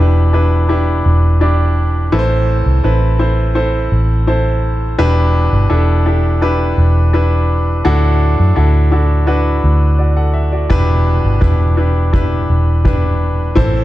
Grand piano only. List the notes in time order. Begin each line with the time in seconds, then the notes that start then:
Already playing: B2 D4 E4
0.00 G4 B4
0.33 D4 E4 G4 B4
0.69 D4 E4 G4 B4
1.41 D4 E4 G4 D5
2.12 A2 E3 C4 E4 A4 B4
2.19 C5
2.84 C4 E4 A4 B4
3.19 C4 E4 A4 C5
3.55 C4 E4 A4 C5
4.27 C4 E4 A4 C5
4.99 B2 D4 E4 G4 B4
5.70 D4 E4 G4 A4
6.06 D4 E4 G4 A4
6.42 D4 E4 G4 B4
7.13 D4 E4 G4 B4
7.85 A2 D4 E4 F#4 A4
8.56 D4 E4 F#4 A4
8.91 D4 E4 F#4 A4
9.27 D4 E4 F#4 B4
9.98 F#4 D5
10.17 A4 F#5
10.34 E5
10.52 F#4 D5
10.70 B2 D4 E4 G4 B4
11.41 D4 E4 G4 B4
11.77 D4 E4 G4 B4
12.13 D4 E4 G4 B4
12.85 D4 E4 G4 B4
13.55 A2 E3 C4 E4 A4 C5